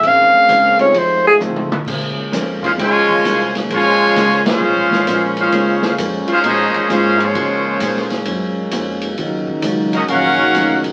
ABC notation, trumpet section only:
X:1
M:4/4
L:1/8
Q:"Swing" 1/4=132
K:Bbm
V:1 name="Trumpet section"
z8 | z3 [DAcf] [Fcda]3 z | [Fcda]3 [DAcf]4 [DAcf]- | [DAcf]2 z [DAcf] [DAce]2 [DAcf] [A,Fcd]- |
[A,Fcd]3 z4 z | z3 [DGBe] [DBfg]3 z |]